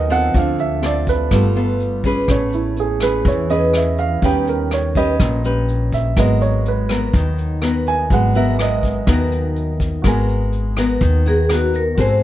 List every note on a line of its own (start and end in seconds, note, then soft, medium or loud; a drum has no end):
0.00 0.31 D#2 medium
0.00 0.32 D#3 medium
0.00 0.31 F#3 soft
0.00 0.32 B3 soft
0.00 0.37 A#4 medium
0.00 0.11 D#5 medium
0.00 0.12 F#5 medium
0.00 0.37 G#5 medium
0.10 0.79 C4 medium
0.10 0.79 F4 medium
0.10 0.79 A4 medium
0.10 0.35 F#5 medium
0.10 closed hi-hat soft
0.10 shaker medium
0.34 1.28 D2 medium
0.34 1.29 D3 medium
0.34 1.28 F3 soft
0.34 1.28 C4 soft
0.34 0.60 F5 medium
0.34 kick medium
0.34 closed hi-hat medium
0.34 shaker medium
0.59 0.83 E5 medium
0.59 closed hi-hat soft
0.59 shaker soft
0.82 1.29 C4 soft
0.82 1.29 F4 medium
0.82 1.30 A4 medium
0.82 1.08 D5 medium
0.82 cross-stick soft
0.82 closed hi-hat soft
0.82 shaker soft
1.07 1.53 B4 medium
1.07 kick medium
1.07 closed hi-hat soft
1.07 shaker medium
1.31 2.24 G1 medium
1.31 2.27 G3 soft
1.31 2.24 A3 soft
1.31 2.25 B3 soft
1.31 1.46 B3 soft
1.31 2.25 F4 soft
1.31 1.47 F4 soft
1.31 1.47 A4 medium
1.31 kick medium
1.31 cross-stick medium
1.31 closed hi-hat medium
1.31 shaker medium
1.55 2.01 B3 medium
1.55 2.01 F4 medium
1.55 2.01 A4 medium
1.55 closed hi-hat soft
1.55 shaker soft
1.80 closed hi-hat soft
1.80 shaker medium
2.04 2.74 C#4 medium
2.04 2.74 G#4 medium
2.04 2.74 B4 medium
2.04 kick medium
2.04 closed hi-hat soft
2.04 shaker medium
2.28 3.21 A1 medium
2.28 3.23 A3 soft
2.28 2.61 B3 soft
2.28 2.61 C#4 soft
2.28 2.54 C#5 medium
2.28 kick soft
2.28 cross-stick medium
2.28 closed hi-hat medium
2.28 shaker medium
2.53 2.77 E4 soft
2.53 closed hi-hat soft
2.53 shaker soft
2.76 3.02 G#4 medium
2.76 closed hi-hat soft
2.76 shaker medium
3.00 3.46 C#4 medium
3.00 3.46 G#4 medium
3.00 3.26 B4 medium
3.00 3.47 B4 medium
3.00 cross-stick medium
3.00 closed hi-hat soft
3.00 shaker medium
3.25 4.18 E2 medium
3.25 4.21 E3 soft
3.25 3.50 C#5 medium
3.25 kick medium
3.25 closed hi-hat medium
3.25 shaker medium
3.49 4.19 C#4 medium
3.49 4.19 G#4 soft
3.49 4.20 B4 medium
3.49 3.74 D#5 medium
3.49 closed hi-hat soft
3.49 shaker soft
3.73 3.99 E5 medium
3.73 cross-stick medium
3.73 closed hi-hat soft
3.73 shaker medium
3.98 4.22 F5 medium
3.98 closed hi-hat soft
3.98 shaker medium
4.22 5.15 D#2 medium
4.22 5.18 D#3 soft
4.22 4.92 G3 soft
4.22 4.92 B3 soft
4.22 4.71 C#4 soft
4.22 4.93 C#4 soft
4.22 4.72 G4 soft
4.22 4.72 B4 medium
4.22 4.48 G5 medium
4.22 kick medium
4.22 closed hi-hat medium
4.22 shaker medium
4.47 4.71 A#4 soft
4.47 closed hi-hat soft
4.47 shaker soft
4.71 4.96 C#5 medium
4.71 cross-stick medium
4.71 closed hi-hat soft
4.71 shaker soft
4.95 5.40 C#4 medium
4.95 5.41 G4 medium
4.95 5.41 B4 medium
4.95 5.42 D#5 medium
4.95 kick soft
4.95 closed hi-hat soft
4.95 shaker medium
5.20 6.13 A#1 medium
5.20 6.14 A#2 medium
5.20 kick medium
5.20 cross-stick medium
5.20 closed hi-hat medium
5.20 shaker medium
5.44 6.13 C#4 medium
5.44 6.13 G4 medium
5.44 6.14 B4 medium
5.44 closed hi-hat soft
5.44 shaker soft
5.68 closed hi-hat soft
5.68 shaker medium
5.92 6.17 E5 medium
5.92 kick medium
5.92 closed hi-hat soft
5.92 shaker medium
6.17 7.10 G#1 medium
6.17 6.49 F#3 soft
6.17 7.12 G#3 medium
6.17 6.86 B3 medium
6.17 6.50 B3 soft
6.17 6.86 F#4 medium
6.17 6.87 A#4 medium
6.17 6.42 D#5 medium
6.17 kick medium
6.17 cross-stick medium
6.17 closed hi-hat medium
6.17 shaker medium
6.41 6.65 C#5 medium
6.41 closed hi-hat soft
6.41 shaker soft
6.65 7.36 B4 medium
6.65 closed hi-hat soft
6.89 7.59 B3 medium
6.89 7.59 F#4 medium
6.89 7.59 A#4 medium
6.89 cross-stick medium
6.89 closed hi-hat soft
6.89 shaker medium
7.14 8.07 D#2 medium
7.14 8.09 D#3 medium
7.14 kick medium
7.14 closed hi-hat medium
7.14 shaker medium
7.38 closed hi-hat soft
7.38 shaker soft
7.62 8.31 B3 medium
7.62 8.32 F#4 soft
7.62 8.32 A#4 medium
7.62 cross-stick medium
7.62 closed hi-hat soft
7.86 8.11 G#5 medium
7.86 closed hi-hat soft
7.86 shaker medium
8.10 9.03 G#1 medium
8.10 10.01 F#3 soft
8.10 9.06 G#3 soft
8.10 10.01 B3 soft
8.10 8.36 F#5 medium
8.10 kick medium
8.10 closed hi-hat medium
8.10 shaker medium
8.35 8.56 B3 medium
8.35 8.56 F#4 medium
8.35 8.56 A#4 medium
8.35 8.59 E5 medium
8.35 closed hi-hat soft
8.35 shaker soft
8.59 9.04 B3 soft
8.59 9.04 F#4 soft
8.59 9.04 A#4 medium
8.59 9.29 D#5 medium
8.59 cross-stick medium
8.59 closed hi-hat soft
8.59 shaker medium
8.83 kick medium
8.83 closed hi-hat soft
8.83 shaker medium
9.07 10.00 D#2 medium
9.07 10.02 D#3 medium
9.07 9.73 B3 medium
9.07 9.73 F#4 medium
9.07 9.73 A#4 medium
9.07 kick medium
9.07 cross-stick medium
9.07 closed hi-hat medium
9.07 shaker medium
9.31 closed hi-hat soft
9.31 shaker soft
9.56 closed hi-hat soft
9.80 kick medium
9.80 closed hi-hat soft
9.80 shaker medium
10.02 10.97 G#1 medium
10.02 10.99 G#3 medium
10.02 10.73 B3 soft
10.02 11.93 F#4 soft
10.02 10.74 F#4 soft
10.02 11.94 A#4 soft
10.02 10.74 A#4 medium
10.02 kick soft
10.02 cross-stick medium
10.02 closed hi-hat soft
10.02 shaker medium
10.08 11.96 G#5 medium
10.28 closed hi-hat soft
10.28 shaker soft
10.52 closed hi-hat soft
10.52 shaker soft
10.76 11.22 B3 medium
10.76 11.22 F#4 soft
10.76 11.22 A#4 medium
10.76 cross-stick medium
10.76 closed hi-hat soft
10.76 shaker medium
11.01 11.94 D#2 medium
11.01 11.96 D#3 medium
11.01 kick medium
11.01 closed hi-hat soft
11.01 shaker medium
11.25 11.46 B3 soft
11.25 11.46 F#4 medium
11.25 11.50 G#4 medium
11.25 11.47 A#4 medium
11.25 closed hi-hat soft
11.25 shaker soft
11.49 11.82 B3 medium
11.49 11.82 F#4 medium
11.49 11.75 F#4 medium
11.49 11.82 A#4 medium
11.49 cross-stick medium
11.49 closed hi-hat soft
11.49 shaker medium
11.74 11.98 A#4 medium
11.74 closed hi-hat soft
11.74 shaker medium
11.95 12.23 G#1 medium
11.95 12.23 G#3 soft
11.95 12.23 C4 medium
11.95 12.23 F#4 soft
11.95 12.23 F#4 medium
11.95 12.23 A4 soft
11.95 12.23 A4 medium
11.95 kick medium
11.95 closed hi-hat medium
11.95 shaker medium
11.99 12.23 C5 soft
11.99 12.23 C5 medium
11.99 12.23 G#5 soft